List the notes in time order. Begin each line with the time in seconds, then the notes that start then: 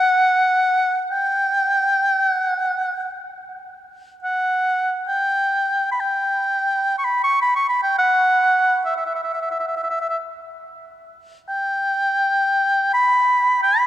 Already playing: F#5
1.11 G5
2.29 F#5
4.22 F#5
5.08 G5
5.92 B5
6.00 G5
6.98 C#6
7.05 B5
7.24 C#6
7.42 B5
7.55 C#6
7.69 B5
7.83 G5
7.98 F#5
8.86 E5
8.96 E5
9.06 E5
9.15 E5
9.23 E5
9.34 E5
9.41 E5
9.51 E5
9.60 E5
9.67 E5
9.76 E5
9.83 E5
9.90 E5
10.01 E5
10.10 E5
11.49 G5
12.94 B5
13.63 B5